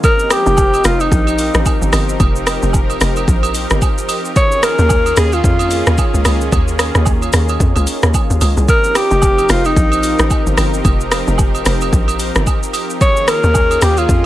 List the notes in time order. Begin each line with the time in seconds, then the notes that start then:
0.04 F3 C4 D#4 G4 A#4, kick, high agogo, shaker
0.19 shaker
0.30 G4, cross-stick, open hi-hat, high agogo, shaker
0.46 F1, shaker
0.57 kick, low woodblock, shaker
0.74 high agogo, shaker
0.84 F1 F4, cross-stick, open hi-hat, shaker
1.00 D#4, high agogo, shaker
1.12 A#1, kick, shaker
1.27 high agogo, shaker
1.38 open hi-hat, shaker
1.54 A1, cross-stick, shaker
1.66 kick, high agogo, low woodblock, shaker
1.82 G1, shaker
1.92 G1, cross-stick, open hi-hat, high agogo, shaker
2.09 shaker
2.20 F1, kick, high agogo, shaker
2.36 shaker
2.46 cross-stick, open hi-hat, high agogo, shaker
2.62 F1, shaker
2.73 kick, low woodblock, shaker
2.90 high agogo, shaker
3.01 F1, cross-stick, open hi-hat, shaker
3.16 high agogo, shaker
3.28 A#1, kick, shaker
3.43 high agogo, shaker
3.55 open hi-hat, shaker
3.70 G1, cross-stick, shaker
3.82 kick, high agogo, low woodblock, shaker
3.98 shaker
4.09 open hi-hat, high agogo, shaker
4.25 shaker
4.36 D#3 A#3 C#4 F4 G#4 C#5, kick, high agogo, shaker
4.52 shaker
4.63 A#4, cross-stick, open hi-hat, high agogo, shaker
4.79 D#2, shaker
4.89 kick, low woodblock, shaker
5.06 high agogo, shaker
5.17 D#2 G#4, cross-stick, open hi-hat, shaker
5.32 F4, high agogo, shaker
5.44 F2, kick, shaker
5.59 high agogo, shaker
5.71 open hi-hat, shaker
5.86 D#2, cross-stick, shaker
5.98 kick, high agogo, low woodblock, shaker
6.14 C#2, shaker
6.25 C#2, cross-stick, open hi-hat, high agogo, shaker
6.41 shaker
6.52 D#2, kick, high agogo, shaker
6.68 shaker
6.79 cross-stick, open hi-hat, high agogo, shaker
6.95 D#2, cross-stick, shaker
7.05 kick, low woodblock, shaker
7.22 high agogo, shaker
7.33 D#2, cross-stick, open hi-hat, shaker
7.48 high agogo, shaker
7.60 F2, kick, shaker
7.76 C#2, high agogo, shaker
7.87 open hi-hat, shaker
8.02 D#2, cross-stick, shaker
8.14 kick, high agogo, low woodblock, shaker
8.30 D#2, shaker
8.41 C#2, open hi-hat, high agogo, shaker
8.57 C2, shaker
8.68 F3 C4 D#4 G4 A#4, kick, high agogo, shaker
8.84 shaker
8.95 G4, cross-stick, open hi-hat, high agogo, shaker
9.11 F1, shaker
9.22 kick, low woodblock, shaker
9.38 high agogo, shaker
9.49 F1 F4, cross-stick, open hi-hat, shaker
9.65 D#4, high agogo, shaker
9.76 A#1, kick, shaker
9.92 high agogo, shaker
10.03 open hi-hat, shaker
10.19 A1, cross-stick, shaker
10.30 kick, high agogo, low woodblock, shaker
10.46 G1, shaker
10.57 G1, cross-stick, open hi-hat, high agogo, shaker
10.74 shaker
10.85 F1, kick, high agogo, shaker
11.00 shaker
11.11 cross-stick, open hi-hat, high agogo, shaker
11.27 F1, shaker
11.38 kick, low woodblock, shaker
11.55 high agogo, shaker
11.65 F1, cross-stick, open hi-hat, shaker
11.81 high agogo, shaker
11.93 A#1, kick, shaker
12.08 high agogo, shaker
12.19 open hi-hat, shaker
12.35 G1, cross-stick, shaker
12.47 kick, high agogo, low woodblock, shaker
12.63 shaker
12.73 open hi-hat, high agogo, shaker
12.90 shaker
13.01 D#3 A#3 C#4 F4 G#4 C#5, kick, high agogo, shaker
13.17 shaker
13.28 A#4, cross-stick, open hi-hat, high agogo, shaker
13.43 D#2, shaker
13.54 kick, low woodblock, shaker
13.71 high agogo, shaker
13.82 D#2 G4, cross-stick, open hi-hat, shaker
13.97 F4, high agogo, shaker
14.09 F2, kick, shaker